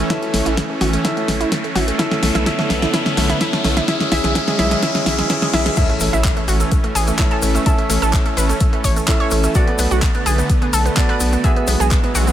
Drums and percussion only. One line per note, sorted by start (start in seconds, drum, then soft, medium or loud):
0.10 kick loud
0.10 snare medium
0.10 closed hi-hat medium
0.22 closed hi-hat soft
0.34 snare medium
0.34 open hi-hat loud
0.46 closed hi-hat medium
0.57 kick loud
0.57 snare medium
0.57 closed hi-hat medium
0.81 snare medium
0.81 open hi-hat medium
0.93 closed hi-hat medium
1.05 kick loud
1.05 snare medium
1.05 closed hi-hat medium
1.17 closed hi-hat soft
1.28 kick medium
1.28 snare medium
1.28 open hi-hat loud
1.41 closed hi-hat medium
1.52 kick loud
1.52 snare medium
1.52 closed hi-hat medium
1.64 closed hi-hat soft
1.76 snare medium
1.76 open hi-hat medium
1.88 closed hi-hat medium
1.99 kick loud
1.99 snare medium
1.99 closed hi-hat medium
2.11 snare medium
2.11 closed hi-hat soft
2.23 snare medium
2.23 open hi-hat loud
2.35 snare medium
2.35 closed hi-hat medium
2.46 kick loud
2.46 snare loud
2.46 closed hi-hat medium
2.59 snare medium
2.70 kick medium
2.70 snare medium
2.70 open hi-hat medium
2.82 snare medium
2.82 closed hi-hat medium
2.94 kick loud
2.94 snare loud
2.94 closed hi-hat medium
3.06 snare medium
3.06 closed hi-hat soft
3.17 snare loud
3.17 open hi-hat loud
3.30 snare medium
3.30 closed hi-hat medium
3.41 kick loud
3.41 snare loud
3.41 closed hi-hat medium
3.53 snare medium
3.53 closed hi-hat soft
3.64 snare loud
3.64 open hi-hat medium
3.77 snare medium
3.77 closed hi-hat medium
3.88 kick loud
3.88 snare loud
3.88 closed hi-hat medium
4.00 snare medium
4.00 closed hi-hat soft
4.12 snare loud
4.12 open hi-hat loud
4.24 snare medium
4.24 closed hi-hat medium
4.35 kick loud
4.35 snare loud
4.35 closed hi-hat medium
4.48 snare medium
4.48 closed hi-hat soft
4.59 snare loud
4.59 open hi-hat medium
4.71 snare medium
4.71 closed hi-hat medium
4.83 kick loud
4.83 snare loud
4.83 closed hi-hat medium
4.95 snare loud
4.95 closed hi-hat soft
5.06 kick medium
5.06 snare loud
5.06 open hi-hat loud
5.19 snare medium
5.19 closed hi-hat medium
5.30 kick loud
5.30 snare loud
5.30 closed hi-hat medium
5.42 snare loud
5.42 closed hi-hat soft
5.54 snare loud
5.54 open hi-hat medium
5.66 snare loud
5.66 closed hi-hat medium
5.76 kick loud
5.76 closed hi-hat medium
5.76 crash loud
5.76 shaker soft
5.90 closed hi-hat soft
6.00 open hi-hat loud
6.00 shaker medium
6.13 closed hi-hat soft
6.13 shaker soft
6.24 kick loud
6.24 clap loud
6.24 closed hi-hat loud
6.24 shaker soft
6.37 closed hi-hat soft
6.48 open hi-hat medium
6.48 shaker medium
6.60 closed hi-hat soft
6.60 shaker medium
6.72 kick loud
6.72 closed hi-hat loud
6.72 shaker soft
6.84 closed hi-hat soft
6.95 open hi-hat loud
6.95 shaker loud
7.07 closed hi-hat soft
7.07 shaker medium
7.19 kick loud
7.19 clap loud
7.19 closed hi-hat medium
7.19 shaker soft
7.31 closed hi-hat soft
7.42 open hi-hat medium
7.42 shaker medium
7.55 closed hi-hat soft
7.55 shaker medium
7.66 kick loud
7.66 closed hi-hat medium
7.66 shaker soft
7.78 closed hi-hat soft
7.90 open hi-hat loud
7.90 shaker medium
8.02 closed hi-hat soft
8.02 shaker medium
8.13 kick loud
8.13 clap loud
8.13 closed hi-hat medium
8.13 shaker soft
8.26 closed hi-hat soft
8.37 open hi-hat loud
8.37 shaker loud
8.49 closed hi-hat soft
8.49 shaker medium
8.60 kick loud
8.60 closed hi-hat loud
8.60 shaker soft
8.73 closed hi-hat soft
8.84 kick medium
8.84 open hi-hat loud
8.84 shaker loud
8.96 closed hi-hat soft
8.96 shaker medium
9.08 kick loud
9.08 clap loud
9.08 closed hi-hat medium
9.08 shaker soft
9.20 closed hi-hat soft
9.31 open hi-hat loud
9.31 shaker medium
9.43 closed hi-hat soft
9.43 shaker medium
9.55 kick loud
9.55 closed hi-hat medium
9.55 shaker soft
9.67 closed hi-hat soft
9.78 open hi-hat loud
9.78 shaker medium
9.91 closed hi-hat soft
9.91 shaker medium
10.02 kick loud
10.02 clap loud
10.02 closed hi-hat medium
10.02 shaker soft
10.15 closed hi-hat soft
10.26 open hi-hat loud
10.26 shaker loud
10.38 closed hi-hat soft
10.38 shaker medium
10.50 kick loud
10.50 closed hi-hat medium
10.50 shaker soft
10.62 closed hi-hat soft
10.73 open hi-hat loud
10.73 shaker loud
10.86 closed hi-hat soft
10.86 shaker medium
10.97 kick loud
10.97 clap loud
10.97 closed hi-hat medium
10.97 shaker soft
11.09 closed hi-hat soft
11.20 open hi-hat loud
11.20 shaker loud
11.32 closed hi-hat soft
11.32 shaker medium
11.44 kick loud
11.44 closed hi-hat medium
11.44 shaker soft
11.56 closed hi-hat soft
11.67 open hi-hat loud
11.67 shaker medium
11.80 closed hi-hat soft
11.80 shaker medium
11.91 kick loud
11.91 clap loud
11.91 closed hi-hat medium
11.91 shaker soft
12.04 closed hi-hat soft
12.15 open hi-hat medium
12.15 shaker medium
12.27 closed hi-hat soft
12.27 shaker medium